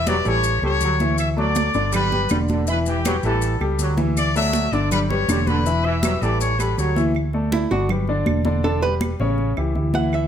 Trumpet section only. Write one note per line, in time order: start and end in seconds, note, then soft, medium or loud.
0.08 0.26 D5 loud
0.08 0.26 D6 medium
0.27 0.63 C#5 loud
0.27 0.63 C#6 medium
0.64 1.16 C#5 loud
0.64 1.16 C#6 medium
1.19 1.28 E5 medium
1.19 1.28 E6 medium
1.39 1.90 D5 loud
1.39 1.90 D6 medium
1.95 2.38 B4 loud
1.95 2.38 B5 medium
2.69 2.77 B4 medium
2.69 2.77 B5 medium
2.88 3.22 G4 medium
2.88 3.22 G5 medium
3.26 3.60 A4 medium
3.26 3.59 A5 medium
4.18 4.35 D5 loud
4.18 4.35 D6 medium
4.36 4.70 E5 loud
4.36 4.71 E6 loud
4.73 4.91 D5 loud
4.73 4.92 D6 medium
4.91 4.99 B4 loud
4.91 5.01 B5 medium
5.09 5.44 C#5 loud
5.09 5.45 C#6 medium
5.46 5.84 B4 loud
5.46 5.85 B5 medium
5.83 6.21 E5 loud
5.83 6.22 E6 medium
6.21 6.40 D5 medium
6.21 6.41 D6 medium
6.40 6.57 C#5 medium
6.40 6.58 C#6 medium
6.58 6.77 B4 medium
6.58 6.78 B5 medium
6.77 7.03 C#5 medium
6.77 7.04 C#6 medium